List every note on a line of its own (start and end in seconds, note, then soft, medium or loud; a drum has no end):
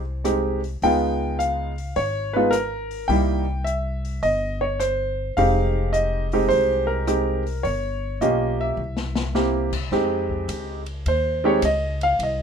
0.00 0.78 C2 medium
0.00 0.22 C5 medium
0.24 0.59 G#3 medium
0.24 0.59 C4 soft
0.24 0.60 D#4 soft
0.24 0.60 G4 medium
0.24 cross-stick medium
0.24 closed hi-hat medium
0.64 open hi-hat soft
0.82 1.92 C#2 medium
0.82 1.70 G#3 medium
0.82 1.71 B3 medium
0.82 1.70 D#4 medium
0.82 1.71 F4 medium
0.82 1.36 G5 medium
0.82 open hi-hat soft
1.39 1.98 F5 medium
1.39 closed hi-hat soft
1.78 open hi-hat soft
1.96 3.06 G#1 medium
1.96 2.36 C#5 medium
1.96 open hi-hat soft
2.33 2.52 G#3 medium
2.33 2.52 B3 medium
2.33 2.52 D#4 medium
2.33 2.52 F4 medium
2.33 2.53 B4 medium
2.51 3.05 A#4 medium
2.51 cross-stick medium
2.51 closed hi-hat medium
2.91 open hi-hat soft
3.08 4.19 C2 medium
3.08 3.44 G3 medium
3.08 3.44 A#3 medium
3.08 3.44 D#4 medium
3.08 3.44 E4 medium
3.08 3.67 G5 medium
3.08 open hi-hat soft
3.64 4.24 E5 medium
3.64 closed hi-hat soft
4.05 open hi-hat soft
4.23 5.33 G1 medium
4.23 4.63 D#5 medium
4.23 open hi-hat soft
4.61 4.79 C#5 medium
4.80 5.33 C5 medium
4.80 cross-stick medium
4.80 closed hi-hat medium
5.37 6.47 F1 medium
5.37 6.25 G#3 medium
5.37 6.25 C4 medium
5.37 6.25 D#4 medium
5.37 6.25 G4 medium
5.37 5.96 F5 medium
5.37 open hi-hat soft
5.93 6.46 D#5 medium
5.93 closed hi-hat soft
6.32 7.04 G#3 medium
6.32 7.04 C4 medium
6.32 7.05 D#4 medium
6.32 7.05 G4 medium
6.32 open hi-hat soft
6.49 7.61 C2 medium
6.49 6.85 C5 medium
6.49 open hi-hat soft
6.87 7.66 A#4 medium
7.07 7.42 G#3 medium
7.07 7.42 C4 soft
7.07 7.42 D#4 soft
7.07 7.42 G4 medium
7.07 cross-stick medium
7.07 closed hi-hat soft
7.46 open hi-hat soft
7.63 8.17 G1 medium
7.63 8.17 C#5 medium
7.63 open hi-hat soft
8.21 8.74 B1 medium
8.21 8.78 A#3 medium
8.21 8.79 C#4 medium
8.21 8.78 F4 medium
8.21 8.79 G4 medium
8.21 8.61 D#5 medium
8.21 closed hi-hat soft
8.61 9.32 E5 medium
8.77 9.87 C2 medium
8.97 snare medium
9.15 snare medium
9.35 9.69 A#3 medium
9.35 9.70 C4 soft
9.35 9.70 E4 medium
9.35 9.70 G4 medium
9.35 snare medium
9.73 kick medium
9.73 crash medium
9.91 10.47 F2 medium
9.91 10.80 G#3 medium
9.91 10.80 C4 medium
9.91 10.80 D#4 medium
9.91 10.80 G4 medium
9.91 snare soft
10.30 kick soft
10.48 11.04 C#2 medium
10.48 hi-hat pedal soft
10.48 ride medium
10.86 ride soft
11.06 11.61 D#2 medium
11.06 11.44 C5 medium
11.06 ride medium
11.44 11.61 G#3 medium
11.44 11.61 C4 medium
11.44 11.61 D#4 medium
11.44 11.61 G4 medium
11.44 11.63 C#5 medium
11.62 12.18 C#2 medium
11.62 12.01 D#5 medium
11.62 hi-hat pedal medium
11.62 ride medium
12.01 12.20 F5 medium
12.01 ride soft
12.19 12.42 C2 medium
12.19 ride medium
12.23 12.42 D#5 medium